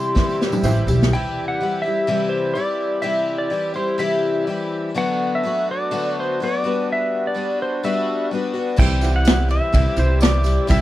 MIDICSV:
0, 0, Header, 1, 7, 480
1, 0, Start_track
1, 0, Tempo, 478469
1, 1127, Time_signature, 4, 2, 24, 8
1, 10848, End_track
2, 0, Start_track
2, 0, Title_t, "Electric slide guitar"
2, 0, Program_c, 0, 29
2, 0, Note_on_c, 0, 84, 103
2, 397, Note_off_c, 0, 84, 0
2, 1137, Note_on_c, 0, 79, 111
2, 1481, Note_off_c, 0, 79, 0
2, 1485, Note_on_c, 0, 78, 99
2, 1824, Note_on_c, 0, 76, 104
2, 1858, Note_off_c, 0, 78, 0
2, 2282, Note_off_c, 0, 76, 0
2, 2300, Note_on_c, 0, 72, 89
2, 2536, Note_off_c, 0, 72, 0
2, 2545, Note_on_c, 0, 74, 106
2, 3028, Note_on_c, 0, 76, 94
2, 3052, Note_off_c, 0, 74, 0
2, 3395, Note_on_c, 0, 74, 94
2, 3410, Note_off_c, 0, 76, 0
2, 3765, Note_off_c, 0, 74, 0
2, 3769, Note_on_c, 0, 72, 81
2, 4006, Note_on_c, 0, 76, 84
2, 4017, Note_off_c, 0, 72, 0
2, 4454, Note_off_c, 0, 76, 0
2, 4993, Note_on_c, 0, 78, 117
2, 5352, Note_off_c, 0, 78, 0
2, 5368, Note_on_c, 0, 76, 113
2, 5719, Note_off_c, 0, 76, 0
2, 5730, Note_on_c, 0, 74, 102
2, 6204, Note_off_c, 0, 74, 0
2, 6220, Note_on_c, 0, 72, 87
2, 6441, Note_off_c, 0, 72, 0
2, 6457, Note_on_c, 0, 74, 95
2, 6927, Note_off_c, 0, 74, 0
2, 6946, Note_on_c, 0, 76, 106
2, 7288, Note_off_c, 0, 76, 0
2, 7296, Note_on_c, 0, 74, 94
2, 7642, Note_off_c, 0, 74, 0
2, 7646, Note_on_c, 0, 72, 78
2, 7852, Note_off_c, 0, 72, 0
2, 7871, Note_on_c, 0, 76, 85
2, 8307, Note_off_c, 0, 76, 0
2, 8822, Note_on_c, 0, 79, 107
2, 9150, Note_off_c, 0, 79, 0
2, 9188, Note_on_c, 0, 78, 96
2, 9513, Note_off_c, 0, 78, 0
2, 9539, Note_on_c, 0, 76, 105
2, 10025, Note_on_c, 0, 72, 94
2, 10028, Note_off_c, 0, 76, 0
2, 10240, Note_off_c, 0, 72, 0
2, 10255, Note_on_c, 0, 74, 99
2, 10698, Note_off_c, 0, 74, 0
2, 10741, Note_on_c, 0, 76, 113
2, 10848, Note_off_c, 0, 76, 0
2, 10848, End_track
3, 0, Start_track
3, 0, Title_t, "Grand piano"
3, 0, Program_c, 1, 0
3, 640, Note_on_c, 1, 67, 78
3, 642, Note_on_c, 1, 72, 98
3, 643, Note_on_c, 1, 64, 84
3, 1000, Note_off_c, 1, 67, 0
3, 1001, Note_off_c, 1, 64, 0
3, 1001, Note_off_c, 1, 72, 0
3, 8810, Note_on_c, 1, 67, 64
3, 8813, Note_on_c, 1, 64, 77
3, 8813, Note_on_c, 1, 76, 80
3, 8815, Note_on_c, 1, 72, 70
3, 8988, Note_off_c, 1, 67, 0
3, 8989, Note_off_c, 1, 64, 0
3, 8989, Note_off_c, 1, 76, 0
3, 8990, Note_off_c, 1, 72, 0
3, 9056, Note_on_c, 1, 78, 70
3, 9057, Note_on_c, 1, 64, 70
3, 9058, Note_on_c, 1, 67, 61
3, 9061, Note_on_c, 1, 72, 56
3, 9764, Note_off_c, 1, 78, 0
3, 9765, Note_off_c, 1, 64, 0
3, 9765, Note_off_c, 1, 67, 0
3, 9767, Note_off_c, 1, 72, 0
3, 10010, Note_on_c, 1, 64, 75
3, 10010, Note_on_c, 1, 76, 79
3, 10013, Note_on_c, 1, 67, 61
3, 10014, Note_on_c, 1, 72, 61
3, 10543, Note_off_c, 1, 64, 0
3, 10543, Note_off_c, 1, 76, 0
3, 10545, Note_off_c, 1, 67, 0
3, 10545, Note_off_c, 1, 72, 0
3, 10727, Note_on_c, 1, 72, 66
3, 10730, Note_on_c, 1, 67, 67
3, 10735, Note_on_c, 1, 64, 74
3, 10735, Note_on_c, 1, 79, 82
3, 10848, Note_off_c, 1, 64, 0
3, 10848, Note_off_c, 1, 67, 0
3, 10848, Note_off_c, 1, 72, 0
3, 10848, Note_off_c, 1, 79, 0
3, 10848, End_track
4, 0, Start_track
4, 0, Title_t, "Accordion"
4, 0, Program_c, 2, 21
4, 0, Note_on_c, 2, 55, 86
4, 0, Note_on_c, 2, 60, 87
4, 0, Note_on_c, 2, 64, 90
4, 0, Note_on_c, 2, 67, 83
4, 1103, Note_off_c, 2, 55, 0
4, 1103, Note_off_c, 2, 67, 0
4, 1106, Note_off_c, 2, 60, 0
4, 1107, Note_off_c, 2, 64, 0
4, 1127, Note_on_c, 2, 64, 83
4, 1133, Note_on_c, 2, 67, 87
4, 1134, Note_on_c, 2, 60, 86
4, 1137, Note_on_c, 2, 55, 94
4, 4932, Note_off_c, 2, 64, 0
4, 4935, Note_off_c, 2, 60, 0
4, 4935, Note_off_c, 2, 67, 0
4, 4937, Note_off_c, 2, 55, 0
4, 4991, Note_on_c, 2, 66, 93
4, 4992, Note_on_c, 2, 57, 89
4, 4992, Note_on_c, 2, 62, 91
4, 4994, Note_on_c, 2, 59, 98
4, 6644, Note_off_c, 2, 57, 0
4, 6644, Note_off_c, 2, 59, 0
4, 6644, Note_off_c, 2, 62, 0
4, 6644, Note_off_c, 2, 66, 0
4, 6658, Note_on_c, 2, 55, 82
4, 6659, Note_on_c, 2, 59, 90
4, 6659, Note_on_c, 2, 66, 82
4, 6666, Note_on_c, 2, 62, 89
4, 8791, Note_off_c, 2, 55, 0
4, 8792, Note_off_c, 2, 59, 0
4, 8792, Note_off_c, 2, 66, 0
4, 8796, Note_off_c, 2, 62, 0
4, 8815, Note_on_c, 2, 64, 89
4, 8818, Note_on_c, 2, 55, 90
4, 8819, Note_on_c, 2, 67, 84
4, 8824, Note_on_c, 2, 60, 89
4, 10848, Note_off_c, 2, 55, 0
4, 10848, Note_off_c, 2, 60, 0
4, 10848, Note_off_c, 2, 64, 0
4, 10848, Note_off_c, 2, 67, 0
4, 10848, End_track
5, 0, Start_track
5, 0, Title_t, "Twelve-string acoustic guitar"
5, 0, Program_c, 3, 25
5, 0, Note_on_c, 3, 55, 41
5, 0, Note_on_c, 3, 64, 47
5, 0, Note_on_c, 3, 67, 55
5, 147, Note_on_c, 3, 48, 74
5, 152, Note_off_c, 3, 55, 0
5, 152, Note_off_c, 3, 64, 0
5, 154, Note_on_c, 3, 52, 87
5, 158, Note_off_c, 3, 67, 0
5, 164, Note_on_c, 3, 55, 85
5, 164, Note_on_c, 3, 64, 81
5, 169, Note_on_c, 3, 67, 89
5, 622, Note_off_c, 3, 52, 0
5, 629, Note_off_c, 3, 55, 0
5, 634, Note_on_c, 3, 52, 68
5, 637, Note_off_c, 3, 48, 0
5, 641, Note_on_c, 3, 55, 74
5, 643, Note_off_c, 3, 64, 0
5, 648, Note_off_c, 3, 67, 0
5, 655, Note_on_c, 3, 64, 77
5, 662, Note_on_c, 3, 67, 67
5, 872, Note_off_c, 3, 67, 0
5, 881, Note_off_c, 3, 52, 0
5, 884, Note_off_c, 3, 55, 0
5, 884, Note_on_c, 3, 67, 65
5, 887, Note_off_c, 3, 64, 0
5, 899, Note_on_c, 3, 64, 52
5, 916, Note_on_c, 3, 55, 48
5, 1126, Note_off_c, 3, 67, 0
5, 1128, Note_off_c, 3, 55, 0
5, 1130, Note_on_c, 3, 48, 74
5, 1133, Note_off_c, 3, 64, 0
5, 1134, Note_on_c, 3, 52, 82
5, 1140, Note_on_c, 3, 55, 83
5, 1146, Note_on_c, 3, 64, 81
5, 1152, Note_on_c, 3, 67, 90
5, 1597, Note_off_c, 3, 52, 0
5, 1605, Note_off_c, 3, 55, 0
5, 1609, Note_off_c, 3, 48, 0
5, 1609, Note_on_c, 3, 52, 61
5, 1617, Note_off_c, 3, 64, 0
5, 1617, Note_on_c, 3, 55, 63
5, 1620, Note_off_c, 3, 67, 0
5, 1632, Note_on_c, 3, 64, 64
5, 1638, Note_on_c, 3, 67, 70
5, 1826, Note_off_c, 3, 67, 0
5, 1838, Note_on_c, 3, 67, 51
5, 1849, Note_off_c, 3, 52, 0
5, 1850, Note_off_c, 3, 64, 0
5, 1853, Note_off_c, 3, 55, 0
5, 1862, Note_on_c, 3, 64, 51
5, 1882, Note_on_c, 3, 55, 43
5, 2075, Note_off_c, 3, 55, 0
5, 2079, Note_on_c, 3, 48, 89
5, 2083, Note_off_c, 3, 67, 0
5, 2086, Note_off_c, 3, 64, 0
5, 2087, Note_on_c, 3, 52, 80
5, 2087, Note_on_c, 3, 55, 90
5, 2098, Note_on_c, 3, 64, 92
5, 2103, Note_on_c, 3, 67, 80
5, 2548, Note_off_c, 3, 52, 0
5, 2552, Note_off_c, 3, 55, 0
5, 2560, Note_off_c, 3, 64, 0
5, 2560, Note_on_c, 3, 52, 71
5, 2564, Note_off_c, 3, 48, 0
5, 2564, Note_on_c, 3, 55, 59
5, 2570, Note_off_c, 3, 67, 0
5, 2572, Note_on_c, 3, 64, 71
5, 2582, Note_on_c, 3, 67, 66
5, 3024, Note_off_c, 3, 52, 0
5, 3029, Note_on_c, 3, 48, 85
5, 3031, Note_off_c, 3, 55, 0
5, 3033, Note_off_c, 3, 64, 0
5, 3036, Note_on_c, 3, 52, 84
5, 3040, Note_off_c, 3, 67, 0
5, 3043, Note_on_c, 3, 55, 85
5, 3046, Note_on_c, 3, 64, 86
5, 3052, Note_on_c, 3, 67, 82
5, 3500, Note_off_c, 3, 52, 0
5, 3510, Note_off_c, 3, 55, 0
5, 3512, Note_on_c, 3, 52, 62
5, 3519, Note_off_c, 3, 48, 0
5, 3522, Note_off_c, 3, 64, 0
5, 3522, Note_on_c, 3, 55, 66
5, 3531, Note_off_c, 3, 67, 0
5, 3534, Note_on_c, 3, 64, 66
5, 3547, Note_on_c, 3, 67, 71
5, 3738, Note_off_c, 3, 67, 0
5, 3750, Note_on_c, 3, 67, 53
5, 3757, Note_off_c, 3, 64, 0
5, 3761, Note_off_c, 3, 52, 0
5, 3766, Note_off_c, 3, 55, 0
5, 3769, Note_on_c, 3, 64, 54
5, 3780, Note_on_c, 3, 55, 46
5, 3992, Note_on_c, 3, 48, 85
5, 3993, Note_off_c, 3, 64, 0
5, 3998, Note_off_c, 3, 55, 0
5, 4000, Note_off_c, 3, 67, 0
5, 4002, Note_on_c, 3, 52, 84
5, 4005, Note_on_c, 3, 64, 94
5, 4010, Note_on_c, 3, 55, 85
5, 4014, Note_on_c, 3, 67, 98
5, 4471, Note_off_c, 3, 52, 0
5, 4478, Note_off_c, 3, 55, 0
5, 4481, Note_off_c, 3, 48, 0
5, 4483, Note_on_c, 3, 52, 61
5, 4488, Note_off_c, 3, 64, 0
5, 4490, Note_on_c, 3, 55, 70
5, 4492, Note_off_c, 3, 67, 0
5, 4503, Note_on_c, 3, 64, 70
5, 4514, Note_on_c, 3, 67, 68
5, 4961, Note_on_c, 3, 50, 80
5, 4966, Note_off_c, 3, 52, 0
5, 4968, Note_off_c, 3, 55, 0
5, 4970, Note_on_c, 3, 54, 90
5, 4972, Note_on_c, 3, 57, 82
5, 4973, Note_off_c, 3, 64, 0
5, 4977, Note_on_c, 3, 59, 85
5, 4982, Note_off_c, 3, 67, 0
5, 4986, Note_on_c, 3, 66, 91
5, 5445, Note_off_c, 3, 50, 0
5, 5448, Note_off_c, 3, 54, 0
5, 5451, Note_off_c, 3, 57, 0
5, 5452, Note_on_c, 3, 54, 65
5, 5462, Note_on_c, 3, 57, 71
5, 5465, Note_off_c, 3, 59, 0
5, 5469, Note_on_c, 3, 59, 66
5, 5477, Note_off_c, 3, 66, 0
5, 5481, Note_on_c, 3, 66, 77
5, 5924, Note_off_c, 3, 57, 0
5, 5928, Note_off_c, 3, 54, 0
5, 5929, Note_on_c, 3, 50, 80
5, 5932, Note_on_c, 3, 54, 81
5, 5936, Note_on_c, 3, 57, 96
5, 5943, Note_off_c, 3, 59, 0
5, 5947, Note_on_c, 3, 59, 84
5, 5951, Note_off_c, 3, 66, 0
5, 5955, Note_on_c, 3, 66, 85
5, 6409, Note_off_c, 3, 50, 0
5, 6411, Note_off_c, 3, 54, 0
5, 6413, Note_off_c, 3, 57, 0
5, 6418, Note_off_c, 3, 59, 0
5, 6422, Note_off_c, 3, 66, 0
5, 6422, Note_on_c, 3, 54, 59
5, 6437, Note_on_c, 3, 57, 65
5, 6444, Note_on_c, 3, 59, 74
5, 6453, Note_on_c, 3, 66, 67
5, 6647, Note_off_c, 3, 66, 0
5, 6656, Note_off_c, 3, 54, 0
5, 6659, Note_on_c, 3, 66, 65
5, 6663, Note_off_c, 3, 57, 0
5, 6666, Note_off_c, 3, 59, 0
5, 6670, Note_on_c, 3, 62, 55
5, 6680, Note_on_c, 3, 59, 62
5, 6684, Note_on_c, 3, 55, 54
5, 7363, Note_off_c, 3, 55, 0
5, 7367, Note_off_c, 3, 59, 0
5, 7367, Note_on_c, 3, 55, 63
5, 7374, Note_off_c, 3, 66, 0
5, 7380, Note_off_c, 3, 62, 0
5, 7380, Note_on_c, 3, 59, 66
5, 7391, Note_on_c, 3, 62, 57
5, 7395, Note_on_c, 3, 66, 67
5, 7850, Note_off_c, 3, 59, 0
5, 7855, Note_off_c, 3, 55, 0
5, 7859, Note_on_c, 3, 55, 80
5, 7860, Note_off_c, 3, 62, 0
5, 7862, Note_off_c, 3, 66, 0
5, 7862, Note_on_c, 3, 59, 82
5, 7871, Note_on_c, 3, 62, 94
5, 7885, Note_on_c, 3, 66, 94
5, 8332, Note_off_c, 3, 55, 0
5, 8335, Note_off_c, 3, 59, 0
5, 8336, Note_on_c, 3, 55, 54
5, 8340, Note_off_c, 3, 62, 0
5, 8347, Note_off_c, 3, 66, 0
5, 8354, Note_on_c, 3, 59, 65
5, 8364, Note_on_c, 3, 62, 66
5, 8374, Note_on_c, 3, 66, 68
5, 8551, Note_off_c, 3, 66, 0
5, 8563, Note_on_c, 3, 66, 57
5, 8566, Note_off_c, 3, 62, 0
5, 8573, Note_off_c, 3, 55, 0
5, 8578, Note_on_c, 3, 62, 52
5, 8581, Note_off_c, 3, 59, 0
5, 8599, Note_on_c, 3, 59, 47
5, 8792, Note_on_c, 3, 48, 87
5, 8800, Note_on_c, 3, 52, 83
5, 8804, Note_off_c, 3, 59, 0
5, 8806, Note_off_c, 3, 66, 0
5, 8808, Note_on_c, 3, 55, 94
5, 8814, Note_off_c, 3, 62, 0
5, 8820, Note_on_c, 3, 64, 76
5, 8822, Note_on_c, 3, 67, 88
5, 9270, Note_off_c, 3, 52, 0
5, 9280, Note_off_c, 3, 48, 0
5, 9282, Note_on_c, 3, 52, 61
5, 9285, Note_off_c, 3, 55, 0
5, 9294, Note_off_c, 3, 64, 0
5, 9295, Note_off_c, 3, 67, 0
5, 9297, Note_on_c, 3, 55, 63
5, 9308, Note_on_c, 3, 64, 66
5, 9316, Note_on_c, 3, 67, 58
5, 9754, Note_off_c, 3, 52, 0
5, 9754, Note_off_c, 3, 55, 0
5, 9756, Note_on_c, 3, 48, 78
5, 9764, Note_off_c, 3, 64, 0
5, 9766, Note_on_c, 3, 52, 76
5, 9766, Note_on_c, 3, 55, 91
5, 9770, Note_off_c, 3, 67, 0
5, 9776, Note_on_c, 3, 64, 92
5, 9782, Note_on_c, 3, 67, 95
5, 10225, Note_off_c, 3, 52, 0
5, 10234, Note_off_c, 3, 55, 0
5, 10237, Note_on_c, 3, 52, 58
5, 10242, Note_off_c, 3, 48, 0
5, 10243, Note_off_c, 3, 64, 0
5, 10246, Note_on_c, 3, 55, 66
5, 10255, Note_off_c, 3, 67, 0
5, 10255, Note_on_c, 3, 64, 59
5, 10268, Note_on_c, 3, 67, 69
5, 10452, Note_off_c, 3, 67, 0
5, 10464, Note_on_c, 3, 67, 51
5, 10480, Note_off_c, 3, 64, 0
5, 10482, Note_off_c, 3, 52, 0
5, 10487, Note_off_c, 3, 55, 0
5, 10492, Note_on_c, 3, 64, 43
5, 10498, Note_on_c, 3, 55, 39
5, 10705, Note_off_c, 3, 55, 0
5, 10706, Note_on_c, 3, 48, 80
5, 10708, Note_off_c, 3, 64, 0
5, 10711, Note_on_c, 3, 52, 76
5, 10716, Note_off_c, 3, 67, 0
5, 10717, Note_on_c, 3, 55, 93
5, 10720, Note_on_c, 3, 64, 86
5, 10734, Note_on_c, 3, 67, 94
5, 10848, Note_off_c, 3, 48, 0
5, 10848, Note_off_c, 3, 52, 0
5, 10848, Note_off_c, 3, 55, 0
5, 10848, Note_off_c, 3, 64, 0
5, 10848, Note_off_c, 3, 67, 0
5, 10848, End_track
6, 0, Start_track
6, 0, Title_t, "Upright bass"
6, 0, Program_c, 4, 32
6, 0, Note_on_c, 4, 48, 80
6, 471, Note_off_c, 4, 48, 0
6, 629, Note_on_c, 4, 33, 85
6, 853, Note_off_c, 4, 33, 0
6, 872, Note_on_c, 4, 35, 91
6, 1095, Note_off_c, 4, 35, 0
6, 8813, Note_on_c, 4, 36, 102
6, 9609, Note_off_c, 4, 36, 0
6, 9766, Note_on_c, 4, 36, 100
6, 9866, Note_off_c, 4, 36, 0
6, 9998, Note_on_c, 4, 36, 99
6, 10601, Note_off_c, 4, 36, 0
6, 10729, Note_on_c, 4, 36, 103
6, 10848, Note_off_c, 4, 36, 0
6, 10848, End_track
7, 0, Start_track
7, 0, Title_t, "Drums"
7, 160, Note_on_c, 9, 38, 65
7, 163, Note_on_c, 9, 36, 93
7, 174, Note_on_c, 9, 54, 25
7, 261, Note_off_c, 9, 38, 0
7, 263, Note_off_c, 9, 36, 0
7, 275, Note_off_c, 9, 54, 0
7, 293, Note_on_c, 9, 54, 24
7, 393, Note_off_c, 9, 54, 0
7, 413, Note_on_c, 9, 38, 69
7, 416, Note_on_c, 9, 54, 28
7, 514, Note_off_c, 9, 38, 0
7, 516, Note_off_c, 9, 54, 0
7, 523, Note_on_c, 9, 54, 74
7, 527, Note_on_c, 9, 47, 62
7, 623, Note_off_c, 9, 54, 0
7, 627, Note_off_c, 9, 47, 0
7, 636, Note_on_c, 9, 54, 97
7, 651, Note_on_c, 9, 45, 85
7, 737, Note_off_c, 9, 54, 0
7, 751, Note_off_c, 9, 45, 0
7, 771, Note_on_c, 9, 54, 28
7, 871, Note_off_c, 9, 54, 0
7, 881, Note_on_c, 9, 43, 87
7, 883, Note_on_c, 9, 54, 75
7, 982, Note_off_c, 9, 43, 0
7, 984, Note_off_c, 9, 54, 0
7, 1016, Note_on_c, 9, 54, 28
7, 1025, Note_on_c, 9, 38, 88
7, 1116, Note_off_c, 9, 54, 0
7, 1125, Note_off_c, 9, 38, 0
7, 8799, Note_on_c, 9, 54, 62
7, 8815, Note_on_c, 9, 36, 114
7, 8823, Note_on_c, 9, 49, 112
7, 8899, Note_off_c, 9, 54, 0
7, 8915, Note_off_c, 9, 36, 0
7, 8924, Note_off_c, 9, 49, 0
7, 9042, Note_on_c, 9, 54, 69
7, 9071, Note_on_c, 9, 51, 75
7, 9142, Note_off_c, 9, 54, 0
7, 9171, Note_off_c, 9, 51, 0
7, 9278, Note_on_c, 9, 54, 97
7, 9301, Note_on_c, 9, 51, 108
7, 9305, Note_on_c, 9, 38, 127
7, 9379, Note_off_c, 9, 54, 0
7, 9401, Note_off_c, 9, 51, 0
7, 9405, Note_off_c, 9, 38, 0
7, 9514, Note_on_c, 9, 54, 27
7, 9535, Note_on_c, 9, 51, 80
7, 9614, Note_off_c, 9, 54, 0
7, 9635, Note_off_c, 9, 51, 0
7, 9760, Note_on_c, 9, 54, 26
7, 9769, Note_on_c, 9, 36, 94
7, 9773, Note_on_c, 9, 51, 107
7, 9861, Note_off_c, 9, 54, 0
7, 9870, Note_off_c, 9, 36, 0
7, 9873, Note_off_c, 9, 51, 0
7, 9996, Note_on_c, 9, 54, 70
7, 10008, Note_on_c, 9, 51, 71
7, 10096, Note_off_c, 9, 54, 0
7, 10108, Note_off_c, 9, 51, 0
7, 10238, Note_on_c, 9, 54, 105
7, 10258, Note_on_c, 9, 51, 89
7, 10262, Note_on_c, 9, 38, 106
7, 10339, Note_off_c, 9, 54, 0
7, 10359, Note_off_c, 9, 51, 0
7, 10363, Note_off_c, 9, 38, 0
7, 10473, Note_on_c, 9, 54, 77
7, 10494, Note_on_c, 9, 51, 75
7, 10573, Note_off_c, 9, 54, 0
7, 10594, Note_off_c, 9, 51, 0
7, 10717, Note_on_c, 9, 54, 71
7, 10733, Note_on_c, 9, 36, 123
7, 10736, Note_on_c, 9, 51, 104
7, 10818, Note_off_c, 9, 54, 0
7, 10833, Note_off_c, 9, 36, 0
7, 10837, Note_off_c, 9, 51, 0
7, 10848, End_track
0, 0, End_of_file